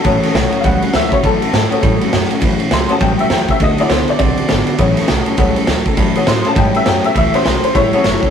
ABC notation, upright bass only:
X:1
M:4/4
L:1/8
Q:"Swing" 1/4=203
K:A
V:1 name="Upright bass" clef=bass
A,,, z B,,, z C,, z D,, z | E,, z G,, z A,, z F,, z | E,, z C,, z A,,, z E,, z | D,, z C,, z B,,, z G,,, z |
A,,, z B,,, z C,, z D,, z | E,, z A,, z G,, z F,, z | C,, z B,,, z A,,, z F,,, z |]